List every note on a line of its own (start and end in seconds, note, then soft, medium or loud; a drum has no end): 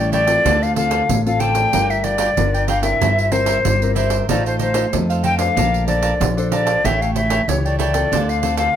0.00 0.36 A1 medium
0.00 0.42 E3 medium
0.00 0.24 G3 medium
0.00 0.25 C#4 medium
0.00 0.25 E4 medium
0.00 0.12 A4 soft
0.00 0.12 C#5 soft
0.00 0.12 D5 medium
0.00 0.12 G5 soft
0.12 0.28 E4 medium
0.12 0.27 A4 medium
0.12 0.26 C#5 medium
0.12 0.64 D5 medium
0.12 0.25 G5 medium
0.12 pandeiro medium
0.27 0.71 C4 medium
0.27 0.71 F4 medium
0.27 0.72 A4 medium
0.27 0.44 A4 soft
0.27 0.43 C#5 soft
0.27 0.43 G5 soft
0.27 pandeiro medium
0.45 1.00 D2 medium
0.45 1.06 D3 medium
0.45 0.75 F4 medium
0.45 0.75 A4 medium
0.45 0.76 C5 medium
0.45 0.76 D5 medium
0.45 pandeiro medium
0.63 0.76 F5 medium
0.63 pandeiro soft
0.76 1.20 C4 medium
0.76 0.89 F4 soft
0.76 1.20 F4 medium
0.76 0.90 A4 soft
0.76 1.20 A4 medium
0.76 0.90 C5 soft
0.76 0.90 D5 soft
0.76 1.21 F5 medium
0.76 pandeiro medium
0.90 1.01 F4 medium
0.90 1.01 A4 medium
0.90 1.01 C5 medium
0.90 1.02 D5 medium
0.90 pandeiro medium
1.09 1.64 A1 loud
1.09 1.70 A2 medium
1.09 pandeiro medium
1.26 1.69 C4 medium
1.26 1.69 F4 medium
1.26 1.69 A4 medium
1.26 1.41 F5 medium
1.26 pandeiro soft
1.40 1.55 F4 medium
1.40 1.55 A4 medium
1.40 1.54 C5 medium
1.40 1.53 D5 medium
1.40 1.92 G5 medium
1.40 pandeiro medium
1.54 1.71 A4 soft
1.54 1.71 C5 medium
1.54 1.71 D5 medium
1.54 pandeiro medium
1.73 2.28 G1 medium
1.73 2.34 G3 medium
1.73 2.32 D4 medium
1.73 1.88 F4 medium
1.73 2.32 F4 medium
1.73 1.88 A#4 medium
1.73 2.32 A#4 medium
1.73 1.89 D5 medium
1.73 1.89 G5 medium
1.73 pandeiro medium
1.90 2.03 A#4 soft
1.90 2.04 D5 soft
1.90 2.05 E5 medium
1.90 2.04 G5 soft
1.90 pandeiro soft
2.04 2.17 F4 soft
2.04 2.18 A#4 soft
2.04 2.70 D5 medium
2.04 2.18 D5 soft
2.04 2.18 G5 medium
2.04 pandeiro medium
2.18 2.29 F4 medium
2.18 2.29 A#4 medium
2.18 2.29 D5 medium
2.18 2.29 G5 medium
2.18 pandeiro medium
2.37 2.92 G1 medium
2.37 2.98 D3 medium
2.37 2.67 D4 medium
2.37 2.67 F4 medium
2.37 2.68 A#4 medium
2.37 pandeiro medium
2.54 2.67 A#4 soft
2.54 2.68 D5 soft
2.54 2.68 G5 soft
2.54 pandeiro soft
2.68 2.83 F4 medium
2.68 2.82 A#4 medium
2.68 2.82 D5 medium
2.68 2.82 F5 medium
2.68 2.81 G5 medium
2.68 pandeiro medium
2.82 3.26 C4 medium
2.82 3.27 E4 medium
2.82 3.27 A#4 medium
2.82 2.99 A#4 soft
2.82 2.99 D5 soft
2.82 3.33 E5 medium
2.82 2.99 G5 soft
2.82 pandeiro medium
3.01 3.56 G1 loud
3.01 3.62 G3 medium
3.01 3.30 E4 medium
3.01 3.31 A#4 medium
3.01 3.31 C5 medium
3.01 3.31 E5 medium
3.01 pandeiro medium
3.19 pandeiro soft
3.31 3.62 C4 medium
3.31 3.45 E4 soft
3.31 3.62 E4 medium
3.31 3.45 A#4 soft
3.31 3.63 A#4 medium
3.31 3.95 C5 medium
3.31 3.46 C5 soft
3.31 3.46 E5 soft
3.31 pandeiro medium
3.46 3.57 E4 medium
3.46 3.57 A#4 medium
3.46 3.57 C5 medium
3.46 3.57 E5 medium
3.46 pandeiro medium
3.65 4.20 G1 loud
3.65 4.26 G3 medium
3.65 pandeiro medium
3.82 4.24 C4 medium
3.82 4.24 E4 medium
3.82 4.25 A#4 medium
3.82 pandeiro soft
3.95 4.11 E4 medium
3.95 4.11 A#4 medium
3.95 4.26 C5 medium
3.95 4.10 C5 medium
3.95 4.09 E5 medium
3.95 pandeiro medium
4.10 4.27 A#4 soft
4.10 4.27 C5 soft
4.10 4.26 E5 medium
4.10 pandeiro medium
4.29 4.83 A1 medium
4.29 4.90 A3 medium
4.29 4.44 D#4 medium
4.29 4.72 D#4 medium
4.29 4.72 F4 medium
4.29 4.44 A4 medium
4.29 4.72 C5 medium
4.29 4.44 C5 medium
4.29 4.44 D5 medium
4.29 4.45 F5 medium
4.29 pandeiro medium
4.46 4.58 A4 soft
4.46 4.59 C5 medium
4.46 4.59 C5 soft
4.46 4.59 F5 soft
4.46 pandeiro soft
4.59 4.73 D#4 soft
4.59 4.73 A4 soft
4.59 4.95 C5 medium
4.59 4.73 C5 medium
4.59 4.74 F5 medium
4.59 pandeiro medium
4.74 4.86 D#4 medium
4.74 4.85 D#4 medium
4.74 4.87 F4 medium
4.74 4.85 A4 medium
4.74 4.85 C5 medium
4.74 4.87 C5 medium
4.74 4.85 F5 medium
4.74 pandeiro medium
4.93 5.47 F2 medium
4.93 5.54 A3 medium
4.93 5.36 D#4 medium
4.93 5.36 F4 medium
4.93 5.36 C5 medium
4.93 pandeiro medium
5.10 5.23 A4 soft
5.10 5.23 C5 soft
5.10 5.24 F5 medium
5.10 pandeiro soft
5.23 5.39 D#4 medium
5.23 5.39 A4 medium
5.23 5.38 C5 medium
5.23 5.37 F5 medium
5.23 5.38 G5 loud
5.23 pandeiro medium
5.38 5.82 D4 medium
5.38 5.83 A4 medium
5.38 5.55 A4 soft
5.38 5.83 C5 medium
5.38 5.55 C5 soft
5.38 5.54 F5 soft
5.38 5.84 F5 loud
5.38 pandeiro medium
5.57 6.11 A#1 loud
5.57 6.17 A#3 medium
5.57 5.86 A#4 medium
5.57 5.87 D5 medium
5.57 5.87 F5 medium
5.57 5.88 A5 medium
5.57 pandeiro medium
5.74 pandeiro soft
5.87 6.18 D4 medium
5.87 6.18 A4 medium
5.87 6.01 A#4 soft
5.87 6.18 C5 medium
5.87 6.48 D5 medium
5.87 6.01 D5 soft
5.87 6.02 F5 soft
5.87 6.02 A5 medium
5.87 pandeiro medium
6.02 6.12 A#4 medium
6.02 6.13 D5 medium
6.02 6.13 F5 medium
6.02 6.13 A5 medium
6.02 pandeiro medium
6.20 6.75 A#1 loud
6.20 6.81 F3 medium
6.20 pandeiro medium
6.37 6.80 D4 medium
6.37 6.80 A4 medium
6.37 6.80 C5 medium
6.37 pandeiro soft
6.51 6.67 A#4 medium
6.51 6.66 D5 medium
6.51 6.87 D5 medium
6.51 6.65 F5 medium
6.51 6.65 A5 medium
6.51 pandeiro medium
6.66 6.83 D5 soft
6.66 6.82 F5 medium
6.66 6.82 A5 medium
6.66 pandeiro medium
6.84 7.39 A1 medium
6.84 7.45 A3 medium
6.84 6.99 E4 medium
6.84 7.26 E4 medium
6.84 7.26 G4 medium
6.84 6.99 A4 medium
6.84 7.00 C#5 medium
6.84 7.26 C#5 medium
6.84 7.03 E5 medium
6.84 7.00 G5 medium
6.84 pandeiro medium
7.01 7.14 A4 soft
7.01 7.15 C#5 soft
7.01 7.14 F5 medium
7.01 7.15 G5 soft
7.01 pandeiro soft
7.15 7.29 E4 soft
7.15 7.29 A4 soft
7.15 7.29 C#5 medium
7.15 7.50 E5 medium
7.15 7.29 G5 medium
7.15 pandeiro medium
7.30 7.40 E4 medium
7.30 7.40 A4 medium
7.30 7.41 C#5 medium
7.30 7.41 G5 medium
7.30 pandeiro medium
7.48 8.02 C#2 medium
7.48 8.09 E3 medium
7.48 7.91 E4 medium
7.48 7.91 G4 medium
7.48 7.67 C#5 medium
7.48 7.92 C#5 medium
7.48 pandeiro medium
7.65 7.78 A4 soft
7.65 7.79 C#5 soft
7.65 7.79 D5 medium
7.65 7.79 G5 soft
7.65 pandeiro soft
7.79 7.94 E4 medium
7.79 7.94 A4 medium
7.79 7.93 C#5 medium
7.79 8.31 D5 loud
7.79 7.92 G5 medium
7.79 pandeiro medium
7.93 8.38 C4 medium
7.93 8.38 F4 medium
7.93 8.10 A4 soft
7.93 8.38 A4 medium
7.93 8.10 C#5 soft
7.93 8.10 G5 soft
7.93 pandeiro medium
8.12 8.66 D2 medium
8.12 8.73 D3 medium
8.12 8.41 F4 medium
8.12 8.42 A4 medium
8.12 8.42 C5 medium
8.12 8.43 D5 medium
8.12 pandeiro medium
8.29 8.58 F5 medium
8.29 pandeiro soft
8.43 8.74 C4 medium
8.43 8.56 F4 soft
8.43 8.74 F4 medium
8.43 8.56 A4 soft
8.43 8.74 A4 medium
8.43 8.57 C5 medium
8.43 8.57 D5 medium
8.43 pandeiro medium
8.57 8.68 F4 medium
8.57 8.68 A4 medium
8.57 8.68 C5 medium
8.57 8.68 D5 medium
8.57 8.76 F5 medium
8.57 pandeiro medium